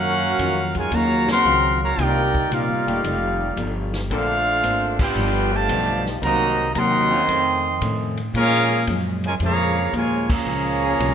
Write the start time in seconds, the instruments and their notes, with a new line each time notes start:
Already playing: upright bass F#2, hollow-body jazz guitar D#3 F#3 C#4 F4, trombone section A#3 C#4 F#4, trumpet section C#4 A#4 F5 F#5
0.39 upright bass F2, trombone section D#3 C#4 F4 F#4, hollow-body jazz guitar D#3 F#3 C#4 F4, kick, hi-hat pedal, ride
0.75 trombone section G#3, trumpet section F4 A#4 C#5 G#5, kick, ride
0.91 upright bass D#2, trombone section C#3 F#3 A#3, hollow-body jazz guitar D#3 F#3 C#4 F4, trumpet section F#4 C#5 F5 A#5, kick, ride
1.28 trombone section C#3 F#3 C4, trumpet section A#4 F5 F#5 C6, snare, ride
1.44 upright bass C#2, hollow-body jazz guitar D#3 F#3 C#4 F4, hi-hat pedal
1.81 trombone section C#3 F#3 A#3, trumpet section F#4 C#5 F5 A#5
1.97 upright bass C2, hollow-body jazz guitar C3 A#3 D#4, trombone section D#3 A#3 D4 D#4 F4 G4, trumpet section D#4 A#4 D5 G5, kick, ride
2.01 hollow-body jazz guitar F4
2.35 kick
2.51 upright bass A#1, hollow-body jazz guitar C3 A#3 D#4 F4, trombone section G3 A#3 F4, trumpet section D#4 A#4 D5 F5, kick, hi-hat pedal, ride
2.68 upright bass G1
2.86 upright bass D#1, trombone section D#3 A3 G4 D5, ride
3.04 upright bass F1, hollow-body jazz guitar F3 D#4 A4 D5, kick, ride
3.57 upright bass G1, hollow-body jazz guitar F3 D#4 A4 D5, kick, hi-hat pedal, ride
3.94 snare, ride
4.09 upright bass A#1, trombone section D3 A3 A#3 C4 D4 F4 A4, hollow-body jazz guitar A#3 D4 A4 C5, trumpet section D4 A4 C5 F5, kick, ride
4.63 upright bass G#1, hollow-body jazz guitar A#3 D4 A4 C5, kick, hi-hat pedal, ride
4.99 trombone section B3 D4 G4, trumpet section F4 B4 D5 G5, kick, crash
5.15 upright bass G1, hollow-body jazz guitar G2 F3 B3 D#4
5.52 trombone section D3 F3 A3, trumpet section G4 D5 F5 A5
5.68 upright bass B1, hollow-body jazz guitar G2 F3 B3 D#4, trombone section F3 B3 D#4 G4, kick, hi-hat pedal, ride
6.06 snare
6.21 upright bass C2, hollow-body jazz guitar C3 F#3 A#3 D#4, trombone section D#3 F#3 A#3 C4 D#4 A#4, trumpet section F#4 C5 D#5 A#5, kick, ride
6.73 upright bass D#2, hollow-body jazz guitar C3 F#3 A#3 D#4, trombone section D#3 F#3 C4, trumpet section A#5 C6, kick, hi-hat pedal, ride
6.77 trumpet section A#4 D#5 F#5
7.11 trombone section F3 C#4 D#4 F4
7.28 upright bass F2, hollow-body jazz guitar F2 D#3 A3 C#4, kick, ride
7.81 hollow-body jazz guitar F2 D#3 A3 C#4, upright bass A2, kick, hi-hat pedal, ride
8.17 ride
8.34 hollow-body jazz guitar A#2 F3 G#3 C#4, upright bass A#2, trombone section G#3 C#4 F4, trumpet section C#4 G#4 A#4 F5, kick, ride
8.71 trombone section F3 A#3 C#4 G#4
8.87 upright bass F#2, hollow-body jazz guitar A#2 F3 G#3 C#4, kick, hi-hat pedal, ride
9.24 trombone section C#3 F3 G#3, trumpet section F4 A#4 C#5 G#5, ride
9.40 upright bass F2, hollow-body jazz guitar A#2 F3 G#3 C#4, trombone section C#3 F3 A#3, trumpet section G#4 C#5 F5 A#5, kick, ride
9.93 upright bass D#2, hollow-body jazz guitar A#2 F3 G#3 C#4, trombone section C#3 F3 G#3, trumpet section F4 A#4 C#5 G#5, kick, hi-hat pedal, ride
10.30 trombone section F3 A#3 C#4, trumpet section G#4 C#5 F5 A#5, kick, crash
10.46 upright bass C#2, hollow-body jazz guitar A#2 F3 G#3 C#4
10.83 trombone section F3 A#3 C#4 G#4
10.99 upright bass C2, hollow-body jazz guitar A#2 F3 G#3 C#4, kick, hi-hat pedal, ride